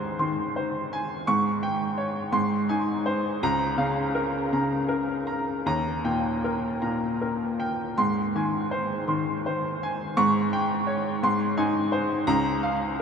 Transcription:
Already playing: G#2 D#3 C5 G#5 C6
0.19 D#3 C6
0.56 C5
0.93 G#5
1.27 G#2 C#6
1.63 G5
1.98 C#5
2.32 G#2 C6
2.69 D#4 G#5
3.06 C5
3.43 C#2 A#5
3.77 C#3 F5
4.15 A#4
4.52 C#3 A#5
4.89 A#4
5.27 A#5
5.66 D#2 A#5
6.04 A#2 G5
6.44 A#4
6.82 A#2 A#5
7.22 A#4
7.60 G5
7.98 G#2 C6
8.35 D#3 G#5
8.71 C5
9.08 D#3 C6
9.46 C5
9.83 G#5
10.17 G#2 C#6
10.53 G5
10.87 C#5
11.23 G#2 C6
11.57 D#4 G#5
11.92 C5
12.27 C#2 A#5
12.63 F5

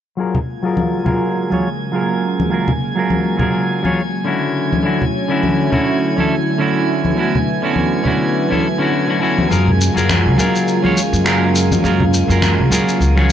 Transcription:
0.17 C#3 F#3 G#3 A#3 F4 G#4 A#4 G#5 G#6
0.35 low conga
0.63 F#3 F4 G#4 A#4
0.77 high conga
1.04 F#3 F4 G#4 A#4, low conga
1.50 F#3 F4 G#4 C#5, high conga
1.92 F#3 F4 G#4 A#4
2.40 high conga
2.50 F#3 F4 G#4 A#4
2.68 low conga
2.96 F#3 F4 G#4 A#4
3.10 high conga
3.37 F#3 F4 G#4 A#4, low conga
3.83 F#3 F4 G#4 C#5, high conga
4.24 D3 C#4 E4 F#4
4.56 D3 A3 C#4 E4
4.73 high conga
4.83 D3 C#4 E4 F#4
5.02 low conga
5.28 D3 C#4 E4 F#4
5.43 high conga
5.70 D3 C#4 E4 F#4, low conga
6.17 D3 C#4 E4 A4, high conga
6.58 D3 C#4 E4 F#4
6.89 B3
7.05 high conga
7.17 D3 C#4 E4 F#4
7.35 low conga
7.62 D3 C#4 E4 F#4
7.76 high conga
8.03 D3 C#4 E4 F#4, low conga
8.49 D3 C#4 E4 A4, high conga
8.78 D3 C#4 E4 F#4
9.07 D3 C#4 E4 F#4
9.19 D3 C#4 E4 F#4
9.39 high conga
9.48 F#2 C#3 F#3 G#3 A#3 F4 G#4 A#4, shaker
9.68 low conga
9.81 shaker
9.94 F#2 F#3 F4 G#4 A#4, shaker
10.09 finger snap, high conga, shaker
10.26 C#2
10.37 F#3 F4 G#4 A#4, low conga, shaker
10.56 shaker
10.68 shaker
10.82 F#3 F4 G#4 C#5, high conga
10.97 shaker
11.13 F#2, shaker
11.24 F#3 F4 G#4 A#4, finger snap, shaker
11.55 shaker
11.72 high conga, shaker
11.83 F#2 F#3 F4 G#4 A#4, shaker
12.00 low conga
12.14 shaker
12.28 F#2 F#3 F4 G#4 A#4, shaker
12.42 finger snap, high conga, shaker
12.58 C#2
12.70 F#3 F4 G#4 A#4, low conga, shaker
12.89 shaker
13.00 C#2, shaker
13.15 F#3 F4 G#4 C#5, finger snap, high conga

